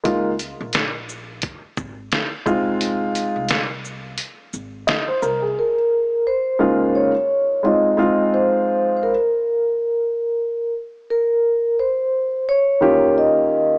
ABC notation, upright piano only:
X:1
M:4/4
L:1/16
Q:"Swing 16ths" 1/4=87
K:Db
V:1 name="Upright piano"
[A,B,EF]2 z12 [A,CEF]2- | [A,CEF]4 z8 e c B A- | A z4 z [D,A,B,EF]2 z4 [A,CEF]2 [A,CEF]2- | [A,CEF]4 z12 |
z8 z2 [E,B,DF=G]6 |]